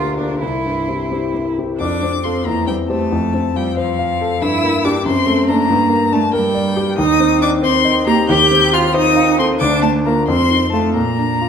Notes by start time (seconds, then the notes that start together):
Already playing: D2 D3 A#3 F4 G4 A#4
0.17 A#3 D4 F4 G4
0.40 C2 E4 C5
0.65 G2
0.88 C4 E4 G4
1.11 C4 E4 G4
1.34 C4
1.59 C4 E4 G4
1.78 F2 D4 D6
2.03 C4
2.23 C4 F4 A4 C6
2.45 E2 A#3 A#5
2.67 G3 C4 G5
2.89 A3 G4 C5 A5
3.12 F2
3.34 C4
3.55 G3 F4 G5
3.76 F3 C5 F5
3.99 F5
4.21 A4
4.41 G2 E4 E6
4.64 A#3
4.84 D4 G4 D6
5.06 F#2 C4 C6
5.27 A3
5.48 A#3 D4 A4 A#5
5.70 G2
5.90 A#3
6.12 A3 D4 A5
6.33 G3 A#4 G5
6.55 D5
6.77 G4
6.98 D#2 D#4 D#6
7.20 C4
7.41 D4 D#4 D6
7.62 C4 C5 C6
7.85 D#5
8.07 A#3 G4 A#5
8.29 D#2 G4 G6
8.51 C4
8.73 F4 F6
8.94 D#4 C5 D#6
9.16 F5
9.39 C4 A4 C6
9.59 D2 D4 D6
9.82 A3 D4 A5
10.05 A#3 F4 A#4 A#5
10.27 F2 C4 C6
10.51 D#4
10.72 A3 F4 A4 A5
10.94 A#2 A#3 A#5
11.18 D4
11.41 F4